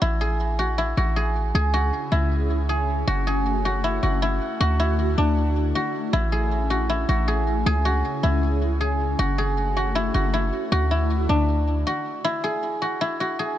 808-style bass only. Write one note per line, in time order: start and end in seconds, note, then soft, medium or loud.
0.02 0.93 A1 loud
0.97 1.52 A1 loud
1.55 1.91 C#2 loud
2.12 3.04 C#2 loud
3.07 3.99 F#1 loud
4.03 4.40 F#1 loud
4.60 5.15 D2 loud
5.18 5.73 D2 loud
6.13 7.05 A1 loud
7.09 7.64 A1 loud
7.66 8.03 C#2 loud
8.23 9.15 C#2 loud
9.19 10.11 F#1 loud
10.14 10.51 F#1 loud
10.72 11.27 D2 loud
11.29 11.84 D2 loud